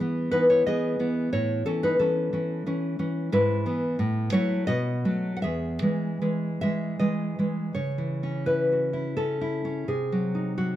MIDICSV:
0, 0, Header, 1, 2, 480
1, 0, Start_track
1, 0, Key_signature, 4, "major"
1, 0, Tempo, 666667
1, 954, Time_signature, 3, 2, 24, 8
1, 2869, Tempo, 696864
1, 3349, Tempo, 770218
1, 5269, Tempo, 701754
1, 7320, End_track
2, 0, Start_track
2, 0, Title_t, "Nylon-string guitar"
2, 0, Program_c, 0, 24
2, 0, Note_on_c, 0, 68, 76
2, 1, Note_on_c, 0, 52, 36
2, 7, Note_on_c, 0, 59, 45
2, 206, Note_off_c, 0, 68, 0
2, 226, Note_off_c, 0, 59, 0
2, 226, Note_on_c, 0, 71, 76
2, 227, Note_off_c, 0, 52, 0
2, 234, Note_on_c, 0, 52, 47
2, 236, Note_on_c, 0, 59, 48
2, 237, Note_on_c, 0, 63, 59
2, 350, Note_off_c, 0, 63, 0
2, 353, Note_off_c, 0, 71, 0
2, 358, Note_on_c, 0, 73, 81
2, 368, Note_on_c, 0, 64, 58
2, 471, Note_off_c, 0, 52, 0
2, 474, Note_off_c, 0, 59, 0
2, 476, Note_off_c, 0, 64, 0
2, 476, Note_off_c, 0, 73, 0
2, 479, Note_on_c, 0, 52, 48
2, 479, Note_on_c, 0, 75, 82
2, 482, Note_on_c, 0, 59, 49
2, 489, Note_on_c, 0, 68, 69
2, 707, Note_off_c, 0, 52, 0
2, 709, Note_off_c, 0, 59, 0
2, 716, Note_on_c, 0, 52, 44
2, 718, Note_on_c, 0, 59, 50
2, 929, Note_off_c, 0, 52, 0
2, 930, Note_off_c, 0, 59, 0
2, 930, Note_off_c, 0, 68, 0
2, 934, Note_off_c, 0, 75, 0
2, 955, Note_on_c, 0, 45, 57
2, 955, Note_on_c, 0, 73, 63
2, 960, Note_on_c, 0, 64, 51
2, 1177, Note_off_c, 0, 64, 0
2, 1181, Note_off_c, 0, 73, 0
2, 1184, Note_off_c, 0, 45, 0
2, 1193, Note_on_c, 0, 69, 75
2, 1198, Note_on_c, 0, 52, 46
2, 1202, Note_on_c, 0, 61, 57
2, 1308, Note_off_c, 0, 61, 0
2, 1311, Note_off_c, 0, 69, 0
2, 1319, Note_on_c, 0, 71, 72
2, 1327, Note_on_c, 0, 63, 59
2, 1427, Note_off_c, 0, 52, 0
2, 1431, Note_off_c, 0, 63, 0
2, 1435, Note_off_c, 0, 71, 0
2, 1436, Note_on_c, 0, 52, 40
2, 1436, Note_on_c, 0, 69, 69
2, 1447, Note_on_c, 0, 61, 49
2, 1667, Note_off_c, 0, 52, 0
2, 1673, Note_off_c, 0, 61, 0
2, 1675, Note_on_c, 0, 52, 50
2, 1682, Note_on_c, 0, 61, 58
2, 1910, Note_off_c, 0, 52, 0
2, 1913, Note_off_c, 0, 61, 0
2, 1918, Note_on_c, 0, 52, 49
2, 1922, Note_on_c, 0, 61, 56
2, 2128, Note_off_c, 0, 69, 0
2, 2144, Note_off_c, 0, 52, 0
2, 2146, Note_off_c, 0, 61, 0
2, 2153, Note_on_c, 0, 52, 46
2, 2156, Note_on_c, 0, 61, 50
2, 2368, Note_off_c, 0, 52, 0
2, 2369, Note_off_c, 0, 61, 0
2, 2393, Note_on_c, 0, 44, 66
2, 2396, Note_on_c, 0, 71, 74
2, 2401, Note_on_c, 0, 64, 60
2, 2623, Note_off_c, 0, 44, 0
2, 2634, Note_on_c, 0, 52, 47
2, 2636, Note_on_c, 0, 59, 58
2, 2848, Note_off_c, 0, 52, 0
2, 2848, Note_off_c, 0, 59, 0
2, 2872, Note_on_c, 0, 45, 65
2, 3078, Note_off_c, 0, 71, 0
2, 3081, Note_off_c, 0, 64, 0
2, 3099, Note_off_c, 0, 45, 0
2, 3102, Note_on_c, 0, 73, 91
2, 3107, Note_on_c, 0, 54, 52
2, 3109, Note_on_c, 0, 57, 59
2, 3111, Note_on_c, 0, 64, 70
2, 3326, Note_off_c, 0, 57, 0
2, 3327, Note_off_c, 0, 54, 0
2, 3334, Note_off_c, 0, 64, 0
2, 3338, Note_off_c, 0, 73, 0
2, 3340, Note_on_c, 0, 75, 97
2, 3347, Note_on_c, 0, 47, 74
2, 3350, Note_on_c, 0, 66, 64
2, 3571, Note_off_c, 0, 47, 0
2, 3579, Note_on_c, 0, 54, 45
2, 3580, Note_on_c, 0, 57, 46
2, 3745, Note_off_c, 0, 66, 0
2, 3748, Note_off_c, 0, 75, 0
2, 3775, Note_on_c, 0, 78, 57
2, 3793, Note_off_c, 0, 57, 0
2, 3794, Note_off_c, 0, 54, 0
2, 3806, Note_off_c, 0, 78, 0
2, 3809, Note_on_c, 0, 76, 75
2, 3819, Note_on_c, 0, 68, 58
2, 3820, Note_on_c, 0, 40, 55
2, 4056, Note_off_c, 0, 40, 0
2, 4059, Note_on_c, 0, 52, 45
2, 4064, Note_on_c, 0, 56, 44
2, 4298, Note_off_c, 0, 52, 0
2, 4298, Note_off_c, 0, 56, 0
2, 4305, Note_on_c, 0, 52, 42
2, 4308, Note_on_c, 0, 56, 38
2, 4544, Note_off_c, 0, 76, 0
2, 4550, Note_off_c, 0, 52, 0
2, 4552, Note_on_c, 0, 76, 77
2, 4555, Note_off_c, 0, 56, 0
2, 4557, Note_on_c, 0, 52, 39
2, 4563, Note_on_c, 0, 56, 47
2, 4777, Note_off_c, 0, 68, 0
2, 4787, Note_off_c, 0, 52, 0
2, 4788, Note_off_c, 0, 76, 0
2, 4790, Note_on_c, 0, 75, 69
2, 4792, Note_off_c, 0, 56, 0
2, 4794, Note_on_c, 0, 52, 42
2, 4799, Note_on_c, 0, 56, 43
2, 5027, Note_off_c, 0, 52, 0
2, 5032, Note_off_c, 0, 56, 0
2, 5035, Note_on_c, 0, 52, 38
2, 5039, Note_on_c, 0, 56, 41
2, 5243, Note_off_c, 0, 52, 0
2, 5244, Note_off_c, 0, 75, 0
2, 5245, Note_off_c, 0, 56, 0
2, 5258, Note_on_c, 0, 73, 58
2, 5265, Note_on_c, 0, 49, 48
2, 5418, Note_on_c, 0, 52, 38
2, 5590, Note_on_c, 0, 61, 39
2, 5731, Note_off_c, 0, 73, 0
2, 5747, Note_on_c, 0, 71, 64
2, 5752, Note_on_c, 0, 64, 35
2, 5926, Note_on_c, 0, 66, 32
2, 6061, Note_off_c, 0, 64, 0
2, 6069, Note_on_c, 0, 64, 41
2, 6154, Note_off_c, 0, 52, 0
2, 6216, Note_off_c, 0, 71, 0
2, 6226, Note_off_c, 0, 61, 0
2, 6229, Note_on_c, 0, 69, 72
2, 6235, Note_on_c, 0, 61, 43
2, 6390, Note_off_c, 0, 64, 0
2, 6398, Note_on_c, 0, 64, 43
2, 6550, Note_off_c, 0, 61, 0
2, 6558, Note_on_c, 0, 61, 38
2, 6645, Note_off_c, 0, 66, 0
2, 6692, Note_off_c, 0, 49, 0
2, 6697, Note_off_c, 0, 69, 0
2, 6717, Note_on_c, 0, 48, 47
2, 6719, Note_on_c, 0, 68, 61
2, 6720, Note_off_c, 0, 61, 0
2, 6721, Note_off_c, 0, 64, 0
2, 6884, Note_on_c, 0, 54, 39
2, 7037, Note_on_c, 0, 63, 43
2, 7173, Note_off_c, 0, 68, 0
2, 7187, Note_off_c, 0, 54, 0
2, 7194, Note_on_c, 0, 54, 41
2, 7194, Note_on_c, 0, 66, 57
2, 7320, Note_off_c, 0, 48, 0
2, 7320, Note_off_c, 0, 54, 0
2, 7320, Note_off_c, 0, 63, 0
2, 7320, Note_off_c, 0, 66, 0
2, 7320, End_track
0, 0, End_of_file